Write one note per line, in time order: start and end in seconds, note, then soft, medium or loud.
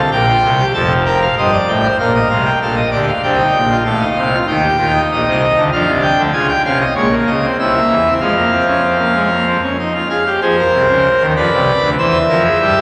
0.11 0.31 A#1 medium
0.11 0.31 A#2 medium
0.11 0.25 A#4 loud
0.11 0.65 G5 medium
0.28 0.47 F4 medium
0.44 0.63 C2 medium
0.44 0.63 C3 medium
0.59 0.72 G4 medium
0.74 1.27 F1 medium
0.74 1.27 F2 medium
0.74 0.93 A4 loud
0.74 0.93 A5 medium
1.05 1.25 A#4 medium
1.05 1.19 G5 medium
1.22 1.35 F5 medium
1.37 1.56 G1 medium
1.37 1.56 G2 medium
1.37 1.51 C5 medium
1.37 1.57 D#5 medium
1.52 1.71 D5 medium
1.68 1.87 A1 medium
1.68 1.87 A2 medium
1.68 1.87 G5 medium
1.84 1.97 C5 medium
1.99 2.18 A#1 medium
1.99 2.18 A#2 medium
1.99 2.52 A#4 medium
1.99 2.12 F5 medium
2.15 2.28 D#5 medium
2.29 2.49 C2 medium
2.29 2.49 C3 medium
2.29 2.43 F5 medium
2.45 2.59 G5 medium
2.61 2.81 A#1 medium
2.61 2.81 A#2 medium
2.61 2.81 A4 medium
2.61 2.75 F5 medium
2.76 2.90 D#5 medium
2.91 3.11 D2 medium
2.91 3.11 D3 medium
2.91 3.11 G4 medium
2.91 3.05 D5 medium
3.08 3.21 F5 medium
3.23 3.42 C2 medium
3.23 3.42 C3 medium
3.23 3.36 D4 medium
3.23 3.77 G5 medium
3.38 3.57 D#4 medium
3.54 3.74 A#1 medium
3.54 3.73 A#2 medium
3.70 3.83 F4 medium
3.84 4.04 A1 medium
3.84 4.04 A2 medium
3.84 3.98 A4 medium
3.84 4.38 F5 medium
4.00 4.20 D#4 medium
4.17 4.36 C2 medium
4.17 4.36 C3 medium
4.33 4.46 F4 medium
4.47 4.66 D#2 medium
4.47 4.67 D#3 medium
4.47 4.61 D#4 medium
4.47 5.01 G5 medium
4.62 4.76 G4 medium
4.78 4.97 D#2 medium
4.78 4.98 D#3 medium
4.78 4.92 F4 medium
4.93 5.61 D#4 medium
5.10 5.24 A#1 medium
5.10 5.24 A#2 medium
5.10 5.64 D#5 medium
5.26 5.45 C2 medium
5.26 5.45 C3 medium
5.56 5.70 D2 medium
5.56 5.70 D3 medium
5.72 5.85 F2 medium
5.72 5.85 F3 medium
5.72 6.25 D4 medium
5.72 5.91 F5 medium
5.87 6.06 C2 medium
5.87 6.06 C3 medium
6.02 6.22 G5 medium
6.17 6.31 D2 medium
6.17 6.31 D3 medium
6.32 6.52 C#2 medium
6.32 6.52 C#3 medium
6.32 6.52 F4 medium
6.32 6.47 G#5 medium
6.48 6.62 G5 medium
6.65 6.84 C2 medium
6.65 6.84 C3 medium
6.65 6.84 C#4 medium
6.65 6.78 F5 medium
6.80 6.94 D#5 medium
6.95 7.14 A#1 medium
6.95 7.15 A#2 medium
6.95 7.09 G#3 medium
6.95 7.15 C#5 medium
7.10 7.30 A#3 medium
7.26 7.46 C#2 medium
7.26 7.46 C#3 medium
7.26 7.46 D#5 medium
7.43 7.57 C4 medium
7.59 7.79 C2 medium
7.59 7.78 C3 medium
7.59 7.72 E4 medium
7.59 8.13 E5 medium
7.76 7.95 A#3 medium
7.89 8.09 E2 medium
7.89 8.09 E3 medium
8.06 8.19 C4 medium
8.20 9.57 F2 medium
8.20 9.57 F3 medium
8.20 8.34 G#3 medium
8.20 9.57 F5 medium
8.36 8.50 A#3 medium
8.51 8.65 C4 medium
8.66 8.81 C#4 medium
8.82 8.97 C4 medium
8.98 9.13 A#3 medium
9.14 9.29 G#3 medium
9.31 9.45 A#3 medium
9.47 9.61 C4 medium
9.63 9.77 C#4 medium
9.79 9.93 D#4 medium
9.94 10.08 F4 medium
10.09 10.24 G#4 medium
10.09 10.29 F5 medium
10.26 10.40 G4 medium
10.41 10.61 F2 medium
10.41 10.61 F3 medium
10.41 10.56 G#4 medium
10.41 11.22 C5 medium
10.58 11.26 A#4 medium
10.72 10.86 C2 medium
10.72 10.86 C3 medium
10.88 11.08 C#2 medium
10.88 11.08 C#3 medium
11.20 11.34 D#2 medium
11.20 11.34 D#3 medium
11.36 11.50 F2 loud
11.36 11.50 F3 medium
11.36 11.90 B4 medium
11.36 11.90 D5 medium
11.51 11.71 C2 medium
11.51 11.71 C3 medium
11.81 11.96 D2 medium
11.81 11.96 D3 medium
11.98 12.17 E2 medium
11.98 12.17 E3 loud
11.98 12.18 C5 medium
11.98 12.81 E5 medium
12.29 12.48 F2 medium
12.29 12.48 F3 medium
12.29 12.43 A#4 medium
12.44 12.58 G#4 medium
12.61 12.74 G2 medium
12.61 12.74 G3 medium
12.61 12.80 G4 medium
12.77 12.81 G#2 medium
12.77 12.81 G#3 medium